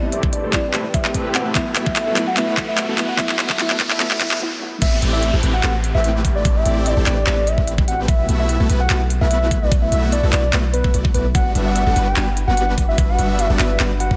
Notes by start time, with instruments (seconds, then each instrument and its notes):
Already playing: 808-style bass A1, synth pluck G3 B3 C4 E4, supersaw synth A3 C4 E4 G4 B4, ambient pad G4 B4 A5, riser
0.03 soft synth lead E5
0.12 808-style bass A1, supersaw synth A3 C4 E4 G4 D5, closed hi-hat
0.23 kick
0.33 soft synth lead D5, closed hi-hat
0.44 808-style bass A1, supersaw synth A3 C4 E4 G4 A4
0.51 808-style bass A1, synth pluck G3 C4 B4, supersaw synth A3 C4 E4 G4 B4, soft synth lead D5, kick, clap, closed hi-hat
0.55 synth pluck E4
0.74 808-style bass A1, supersaw synth A3 C4 E4 G4 B4, clap, closed hi-hat
0.94 soft synth lead E5, kick, closed hi-hat
1.05 808-style bass A1, supersaw synth A3 C4 E4 G4 B4, clap
1.14 kick, closed hi-hat
1.35 soft synth lead F#5, clap, closed hi-hat
1.53 808-style bass B1, synth pluck F#3 A3 B3 E4, supersaw synth A3 B3 E4 F#4 B4, ambient pad A4 E5 F#5 B5, soft synth lead E5, kick, clap, closed hi-hat
1.76 808-style bass B1, supersaw synth A3 B3 E4 F#4 E5, clap, closed hi-hat
1.86 soft synth lead E5, kick
1.96 clap, closed hi-hat
2.07 808-style bass B1, supersaw synth A3 B3 E4 F#4 A4
2.15 808-style bass B1, synth pluck F#3 A3 B3 E4, supersaw synth A3 B3 E4 F#4 B4, clap, closed hi-hat
2.27 soft synth lead F#5
2.35 808-style bass B1, synth pluck F#3 A3 B3, supersaw synth A3 B3 E4 F#4 B4, soft synth lead E5, clap, closed hi-hat
2.39 synth pluck E4
2.57 808-style bass B1, supersaw synth A3 B3 E4 F#4 E5, kick, clap, closed hi-hat
2.68 soft synth lead E5
2.78 clap, closed hi-hat
2.88 808-style bass B1, supersaw synth A3 B3 E4 F#4 A4
2.96 808-style bass B1, synth pluck F#3 A3 B3, supersaw synth A3 B3 E4 F#4 B4, clap, closed hi-hat
3.00 synth pluck E4
3.09 soft synth lead F#5
3.17 808-style bass B1, synth pluck F#3 A3 B3, supersaw synth A3 B3 E4 F#4 B4, soft synth lead E5, kick, clap, closed hi-hat
3.21 synth pluck E4
3.29 clap
3.39 808-style bass B1, supersaw synth A3 B3 E4 F#4 E5, clap, closed hi-hat
3.50 soft synth lead E5, kick, clap
3.57 808-style bass B1, synth pluck F#3 A3 B3 E4, supersaw synth A3 B3 E4 F#4 B4, soft synth lead E5, clap, closed hi-hat
3.70 clap
3.80 808-style bass B1, supersaw synth A3 B3 E4 F#4 E5, kick, clap, closed hi-hat
3.91 soft synth lead E5, clap
3.98 808-style bass B1, synth pluck F#3 A3 B3, supersaw synth A3 B3 E4 F#4 B4, soft synth lead E5, clap, closed hi-hat
4.02 synth pluck E4
4.11 clap
4.19 808-style bass B1, synth pluck F#3 A3 B3 E4, supersaw synth A3 B3 E4 F#4 B4, soft synth lead E5, kick, clap, closed hi-hat
4.31 clap
4.39 synth pluck F#3 A3 B3 E4
4.59 synth pluck F#3 A3 B3
4.63 synth pluck E4
4.82 808-style bass A1, supersaw synth A3 C4 E4 G4 B4, ambient pad A3 C4 G4, soft synth lead E5, kick, closed hi-hat, crash, downlifter
5.02 808-style bass A1, supersaw synth A3 C4 E4 G4 D5, closed hi-hat
5.13 soft synth lead E5
5.23 closed hi-hat
5.33 808-style bass A1, supersaw synth A3 C4 E4 G4 A4
5.43 808-style bass A1, supersaw synth A3 C4 E4 G4 B4, closed hi-hat
5.54 soft synth lead F#5
5.63 808-style bass A1, supersaw synth A3 C4 E4 G4 B4, clap, closed hi-hat
5.84 closed hi-hat
5.95 808-style bass A1, supersaw synth A3 C4 E4 G4 B4, soft synth lead E5
6.04 closed hi-hat
6.25 kick, closed hi-hat
6.35 soft synth lead D5
6.45 808-style bass A1, supersaw synth A3 C4 E4 G4 B4, kick, closed hi-hat
6.56 soft synth lead E5
6.66 808-style bass A1, supersaw synth A3 C4 E4 G4 D5, closed hi-hat
6.86 soft synth lead D5, closed hi-hat
6.97 808-style bass A1, supersaw synth A3 C4 E4 G4 A4
7.06 808-style bass A1, supersaw synth A3 C4 E4 G4 B4, soft synth lead D5, clap, closed hi-hat
7.27 808-style bass A1, supersaw synth A3 C4 E4 G4 B4, clap, closed hi-hat
7.47 soft synth lead E5, closed hi-hat
7.58 808-style bass A1, supersaw synth A3 C4 E4 G4 B4, kick
7.68 closed hi-hat
7.78 kick
7.88 soft synth lead F#5, closed hi-hat
8.08 808-style bass B1, supersaw synth A3 B3 E4 F#4 B4, ambient pad B3 E4, soft synth lead E5, kick, closed hi-hat
8.29 808-style bass B1, supersaw synth A3 B3 E4 F#4 E5, closed hi-hat
8.39 soft synth lead E5
8.49 closed hi-hat
8.60 808-style bass B1, supersaw synth A3 B3 E4 F#4 A4
8.70 808-style bass B1, supersaw synth A3 B3 E4 F#4 B4, closed hi-hat
8.80 soft synth lead F#5
8.90 808-style bass B1, supersaw synth A3 B3 E4 F#4 B4, clap, closed hi-hat
9.10 closed hi-hat
9.21 808-style bass B1, supersaw synth A3 B3 E4 F#4 B4, soft synth lead E5
9.31 closed hi-hat
9.51 kick, closed hi-hat
9.62 soft synth lead D5
9.72 808-style bass B1, supersaw synth A3 B3 E4 F#4 B4, kick, closed hi-hat
9.82 soft synth lead E5
9.92 808-style bass B1, supersaw synth A3 B3 E4 F#4 E5, closed hi-hat
10.12 soft synth lead D5, closed hi-hat
10.23 808-style bass B1, supersaw synth A3 B3 E4 F#4 A4
10.33 808-style bass B1, supersaw synth A3 B3 E4 F#4 B4, soft synth lead D5, clap, closed hi-hat
10.53 808-style bass B1, supersaw synth A3 B3 E4 F#4 B4, clap, closed hi-hat
10.73 soft synth lead B4, closed hi-hat
10.84 808-style bass B1, supersaw synth A3 B3 E4 F#4 E5, kick
10.94 808-style bass B1, supersaw synth A3 B3 E4 F#4 D5, closed hi-hat
11.05 kick
11.14 808-style bass B1, supersaw synth A3 B3 E4 F#4 D5, soft synth lead B4, closed hi-hat
11.35 808-style bass G1, ambient pad G3 D4 F#4 B4, supersaw synth G3 B3 D4 F#4 B4, soft synth lead F#5, kick, closed hi-hat
11.55 808-style bass G1, supersaw synth G3 B3 D4 F#4 E5, closed hi-hat
11.66 soft synth lead F#5
11.76 closed hi-hat
11.86 808-style bass G1, supersaw synth G3 B3 D4 F#4 A4
11.96 808-style bass G1, supersaw synth G3 B3 D4 F#4 B4, closed hi-hat
12.07 soft synth lead G5
12.16 808-style bass G1, supersaw synth G3 B3 D4 F#4 B4, clap, closed hi-hat
12.37 closed hi-hat
12.48 808-style bass G1, supersaw synth G3 B3 D4 F#4 B4, soft synth lead F#5
12.57 closed hi-hat
12.78 kick, closed hi-hat
12.88 soft synth lead E5
12.98 808-style bass G1, supersaw synth G3 B3 D4 F#4 B4, kick, closed hi-hat
13.09 soft synth lead F#5
13.19 808-style bass G1, supersaw synth G3 B3 D4 F#4 E5, closed hi-hat
13.39 soft synth lead E5, closed hi-hat
13.50 808-style bass G1, supersaw synth G3 B3 D4 F#4 A4
13.59 808-style bass G1, supersaw synth G3 B3 D4 F#4 B4, soft synth lead E5, clap, closed hi-hat
13.80 808-style bass G1, supersaw synth G3 B3 D4 F#4 B4, clap, closed hi-hat
14.00 soft synth lead F#5, closed hi-hat
14.11 808-style bass G1, supersaw synth G3 B3 D4 F#4 B4, kick